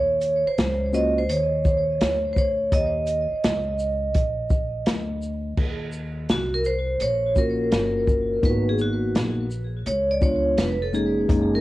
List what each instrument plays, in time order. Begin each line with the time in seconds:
Already playing: upright bass D#2, vibraphone C#5
0.21 closed hi-hat, shaker
0.46 vibraphone C5, muted upright bass stroke
0.58 upright bass C#2, snare, closed hi-hat
0.93 tine electric piano A#3 C#4 F4 F#4, vibraphone D#5, shaker
1.18 vibraphone C5
1.29 upright bass D#2, vibraphone C#5, closed hi-hat
1.65 kick, shaker
2.01 upright bass D2, snare, closed hi-hat
2.33 vibraphone C5, kick, shaker
2.38 vibraphone C#5
2.72 upright bass D#2, vibraphone D#5, kick, closed hi-hat
3.07 closed hi-hat, shaker
3.32 muted upright bass stroke
3.44 upright bass C#2, snare, closed hi-hat
3.79 shaker
4.14 upright bass A#1, kick, closed hi-hat
4.50 kick, shaker
4.86 upright bass D2, snare, closed hi-hat
5.22 shaker
5.57 upright bass D#2, kick, crash
5.92 shaker
6.29 upright bass C2, vibraphone F#4, snare, closed hi-hat
6.54 vibraphone A#4
6.64 vibraphone C5, shaker
7.00 upright bass A#1, vibraphone C#5, closed hi-hat
7.35 tine electric piano A#3 C#4 F4 F#4, vibraphone A#4, kick, shaker
7.72 upright bass G1, snare, closed hi-hat
8.07 kick, shaker
8.42 upright bass G#1, tine electric piano A#3 B3 D#4 F4, vibraphone B4, kick, closed hi-hat
8.50 tine electric piano F#4
8.69 vibraphone G#4
8.78 vibraphone F#4, shaker
9.15 upright bass A#1, snare, closed hi-hat
9.51 shaker
9.86 upright bass C#2, vibraphone C#5, closed hi-hat
10.11 vibraphone D5
10.21 tine electric piano G#3 B3 D4 F4, vibraphone C#5, kick, shaker
10.58 upright bass F1, vibraphone B4, snare, closed hi-hat
10.82 vibraphone A4
10.93 tine electric piano G#3 A#3 C#4 D#4, vibraphone G#4, shaker
11.28 upright bass F#1, tine electric piano G#3 A#3 C#4 D#4, kick, closed hi-hat
11.55 vibraphone A#4